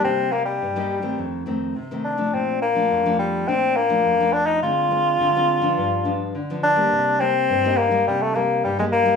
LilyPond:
<<
  \new Staff \with { instrumentName = "Bassoon" } { \time 4/4 \key c \minor \tempo 4 = 105 c'8 bes16 g4. r4 r16 d'8 | c'8 bes4 g8 c'8 bes4 d'16 ees'16 | f'2. r8 d'8~ | d'8 c'4 bes8 g16 a16 bes8 g16 aes16 bes8 | }
  \new Staff \with { instrumentName = "Nylon-string guitar" } { \time 4/4 \key c \minor << { <g bes ees'>8 <g bes ees'>8. <g bes ees'>8 <ees a c'>8. <ees a c'>8 r16 <ees a c'>8 <f a d'>16~ | <f a d'>8 r16 <f a d'>8 <f a d'>8. <f a d'>8 r16 <f a d'>8 <f a d'>8. | <aes c' f'>8 <aes c' f'>8. <aes c' f'>8 <f b d'>8. <f b d'>8 r16 <f b d'>8 <g bes>16~ | <g bes>8 <g bes ees'>8. <g bes ees'>8 <g bes ees'>8. <g bes ees'>8. <g bes ees'>8 <g bes ees'>16 | } \\ { c4 g,4 f,4 c4 | bes,4 f,4 bes,4 f,4 | d4 d4 g,4 d4 | c4 g,4 c4 g,4 | } >> }
>>